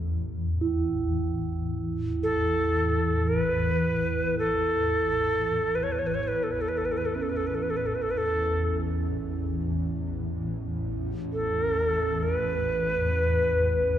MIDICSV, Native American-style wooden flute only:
0, 0, Header, 1, 2, 480
1, 0, Start_track
1, 0, Key_signature, 3, "major"
1, 0, Tempo, 500000
1, 13427, End_track
2, 0, Start_track
2, 0, Title_t, "Native American-style wooden flute"
2, 0, Program_c, 0, 77
2, 2142, Note_on_c, 0, 69, 82
2, 3151, Note_on_c, 0, 71, 86
2, 3166, Note_off_c, 0, 69, 0
2, 4208, Note_off_c, 0, 71, 0
2, 4214, Note_on_c, 0, 69, 78
2, 5521, Note_on_c, 0, 71, 58
2, 5536, Note_off_c, 0, 69, 0
2, 5601, Note_on_c, 0, 73, 57
2, 5615, Note_off_c, 0, 71, 0
2, 5683, Note_on_c, 0, 71, 56
2, 5697, Note_off_c, 0, 73, 0
2, 5749, Note_on_c, 0, 73, 58
2, 5764, Note_off_c, 0, 71, 0
2, 5824, Note_on_c, 0, 71, 55
2, 5838, Note_off_c, 0, 73, 0
2, 5899, Note_on_c, 0, 73, 57
2, 5914, Note_off_c, 0, 71, 0
2, 5985, Note_off_c, 0, 73, 0
2, 5985, Note_on_c, 0, 73, 61
2, 6025, Note_on_c, 0, 71, 66
2, 6035, Note_off_c, 0, 73, 0
2, 6176, Note_on_c, 0, 69, 49
2, 6190, Note_off_c, 0, 71, 0
2, 6253, Note_on_c, 0, 71, 54
2, 6268, Note_off_c, 0, 69, 0
2, 6347, Note_on_c, 0, 69, 56
2, 6362, Note_off_c, 0, 71, 0
2, 6418, Note_on_c, 0, 71, 54
2, 6432, Note_off_c, 0, 69, 0
2, 6503, Note_on_c, 0, 69, 51
2, 6517, Note_off_c, 0, 71, 0
2, 6578, Note_on_c, 0, 71, 50
2, 6592, Note_off_c, 0, 69, 0
2, 6640, Note_on_c, 0, 69, 53
2, 6655, Note_off_c, 0, 71, 0
2, 6692, Note_on_c, 0, 71, 55
2, 6707, Note_off_c, 0, 69, 0
2, 6772, Note_on_c, 0, 69, 51
2, 6786, Note_off_c, 0, 71, 0
2, 6860, Note_on_c, 0, 71, 49
2, 6874, Note_off_c, 0, 69, 0
2, 6934, Note_on_c, 0, 69, 49
2, 6948, Note_off_c, 0, 71, 0
2, 7003, Note_on_c, 0, 71, 49
2, 7017, Note_off_c, 0, 69, 0
2, 7070, Note_on_c, 0, 69, 52
2, 7085, Note_off_c, 0, 71, 0
2, 7169, Note_on_c, 0, 71, 53
2, 7184, Note_off_c, 0, 69, 0
2, 7244, Note_on_c, 0, 69, 53
2, 7259, Note_off_c, 0, 71, 0
2, 7320, Note_on_c, 0, 71, 53
2, 7334, Note_off_c, 0, 69, 0
2, 7394, Note_on_c, 0, 69, 56
2, 7408, Note_off_c, 0, 71, 0
2, 7456, Note_on_c, 0, 71, 51
2, 7470, Note_off_c, 0, 69, 0
2, 7548, Note_on_c, 0, 69, 49
2, 7562, Note_off_c, 0, 71, 0
2, 7630, Note_on_c, 0, 71, 48
2, 7644, Note_off_c, 0, 69, 0
2, 7701, Note_on_c, 0, 69, 61
2, 7715, Note_off_c, 0, 71, 0
2, 7782, Note_on_c, 0, 71, 59
2, 7797, Note_off_c, 0, 69, 0
2, 7848, Note_on_c, 0, 69, 70
2, 7862, Note_off_c, 0, 71, 0
2, 8423, Note_off_c, 0, 69, 0
2, 10880, Note_on_c, 0, 69, 67
2, 11742, Note_on_c, 0, 70, 79
2, 11756, Note_off_c, 0, 69, 0
2, 11848, Note_off_c, 0, 70, 0
2, 11848, Note_on_c, 0, 71, 79
2, 13427, Note_off_c, 0, 71, 0
2, 13427, End_track
0, 0, End_of_file